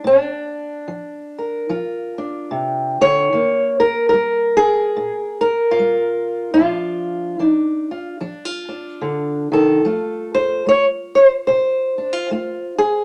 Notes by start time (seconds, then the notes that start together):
0.04 A#2 D4
0.88 F3
1.38 A#4
1.69 F3 F4
2.18 D4
2.51 C3
3.01 D3 C#5
3.33 D#3 A#3
3.80 A#4
4.09 A#4
4.13 G3
4.57 G#4
4.97 A#2
5.41 A#4
5.71 F4
5.79 G3
6.54 F4
6.58 A#2 F3 D4
7.39 F3 D4
7.45 D#4
7.91 F4
8.21 F3 D4
8.45 F4
8.69 D4
9.01 D3
9.52 D#3 A4
9.85 F3 A3 F4
10.35 C5
10.66 A3 C#5
11.15 C5
11.47 C3 C5
11.98 D4
12.13 F4
12.31 A3 F4
12.78 G#4